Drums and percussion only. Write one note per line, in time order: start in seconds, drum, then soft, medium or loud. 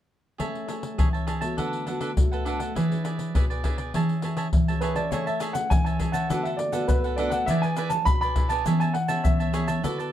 0.40 pandeiro medium
0.40 surdo soft
0.55 pandeiro soft
0.69 pandeiro medium
0.83 pandeiro medium
0.99 pandeiro medium
0.99 surdo medium
1.14 pandeiro soft
1.28 pandeiro medium
1.42 pandeiro medium
1.58 pandeiro medium
1.58 surdo soft
1.73 pandeiro soft
1.87 pandeiro medium
2.01 pandeiro medium
2.17 pandeiro medium
2.17 surdo medium
2.33 pandeiro soft
2.46 pandeiro soft
2.60 pandeiro medium
2.76 pandeiro medium
2.76 surdo soft
2.92 pandeiro soft
3.05 pandeiro medium
3.19 pandeiro medium
3.35 pandeiro medium
3.35 surdo medium
3.51 pandeiro soft
3.64 pandeiro medium
3.64 surdo medium
3.78 pandeiro medium
3.94 pandeiro medium
3.94 surdo soft
4.09 pandeiro soft
4.22 pandeiro medium
4.37 pandeiro medium
4.53 pandeiro medium
4.53 surdo medium
4.68 pandeiro soft
4.81 pandeiro medium
4.96 pandeiro medium
5.12 pandeiro medium
5.12 shaker medium
5.12 surdo soft
5.27 pandeiro soft
5.27 shaker soft
5.40 pandeiro medium
5.40 shaker medium
5.55 pandeiro medium
5.55 shaker medium
5.71 pandeiro medium
5.71 shaker medium
5.71 surdo medium
5.86 pandeiro soft
5.86 shaker soft
6.00 pandeiro medium
6.00 surdo medium
6.14 pandeiro medium
6.14 shaker medium
6.30 pandeiro medium
6.30 shaker medium
6.30 surdo medium
6.45 pandeiro soft
6.45 shaker soft
6.59 pandeiro medium
6.73 pandeiro medium
6.73 shaker medium
6.89 pandeiro medium
6.89 shaker medium
6.89 surdo medium
7.04 pandeiro soft
7.04 shaker soft
7.18 pandeiro medium
7.32 pandeiro medium
7.32 shaker medium
7.48 pandeiro medium
7.48 shaker medium
7.48 surdo medium
7.63 pandeiro soft
7.63 shaker soft
7.77 pandeiro medium
7.77 shaker medium
7.90 pandeiro medium
7.90 shaker medium
8.06 pandeiro medium
8.06 shaker medium
8.06 surdo medium
8.22 pandeiro soft
8.22 shaker soft
8.36 pandeiro medium
8.36 surdo medium
8.50 pandeiro medium
8.50 shaker medium
8.66 pandeiro medium
8.66 shaker medium
8.66 surdo medium
8.81 pandeiro soft
8.81 shaker soft
8.94 pandeiro medium
9.09 pandeiro medium
9.09 shaker medium
9.25 pandeiro medium
9.25 shaker medium
9.25 surdo medium
9.40 pandeiro soft
9.40 shaker soft
9.54 pandeiro medium
9.54 shaker medium
9.68 pandeiro medium
9.68 shaker medium
9.84 pandeiro medium
9.84 shaker medium
9.84 surdo medium
10.00 pandeiro soft
10.00 shaker soft